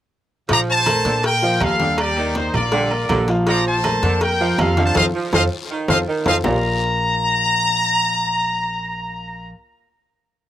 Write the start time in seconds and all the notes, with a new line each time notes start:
0.49 A#1 F3 F4 D5 F5 A#5, cowbell, low agogo, long guiro
0.68 C5 A5, high conga
0.86 A3 A4 A#4, cowbell, high conga, low timbale, low agogo, short guiro
1.05 A#2 D3 A#3 A4 A#4, cowbell, short guiro
1.23 A#4 G5, cowbell, high conga, low agogo, long guiro
1.42 F3 F4 F5, high conga
1.60 D#2 F3 F4 A4 F5, cowbell, high conga, low timbale, low agogo, short guiro
1.79 D3 G3 G4 G5, cowbell, high conga, short guiro
1.98 G4 D5, cowbell, low agogo, long guiro
2.16 D#3 A#3 A#4 D5, high conga, low agogo
2.35 D#4 C5, cowbell, high conga, low timbale, short guiro
2.54 A#1 A#3 F4 A#4 D5, high conga, low conga, low agogo, short guiro
2.72 D3 G3 G4 G5, cowbell, long guiro
2.91 A#3 A#4 D5, high conga, low agogo
3.09 A#1 D3, cowbell, high conga, low timbale, low agogo, short guiro
3.28 F3 F4 F5, cowbell, short guiro
3.46 F3 F4 D5 F5 A#5, cowbell, low agogo, long guiro
3.66 C5 A5
3.84 A3 A4 A#4, cowbell, high conga, low timbale, low agogo, short guiro
4.02 F2 D3 A#3 A4 A#4, cowbell, short guiro
4.21 A#4 G5, cowbell, high conga, low agogo, long guiro
4.40 F3 F4 F5, high conga
4.58 F2 F3 F4 A4 F5, cowbell, high conga, low timbale, low agogo, short guiro
4.77 D3 F3 F4 F5, cowbell, high conga, short guiro
4.84 C5 A5
4.95 F2 F4 A4 C5 D#5 F5, cowbell, high conga, high timbale
5.15 F3
5.32 F2 F4 A4 C5 D#5 F5, cowbell, high conga, high timbale, long guiro
5.70 D#3
5.88 F2 F4 A4 C5 D#5 F5, cowbell, high conga, high timbale, long guiro
6.07 D#3
6.26 F2 F4 A4 C5 D#5 F5, cowbell, high conga, high timbale, long guiro
6.44 A#1 A#2 A#3 F4 A#4 D5 F5 A#5, low bongo, low conga, low timbale, long guiro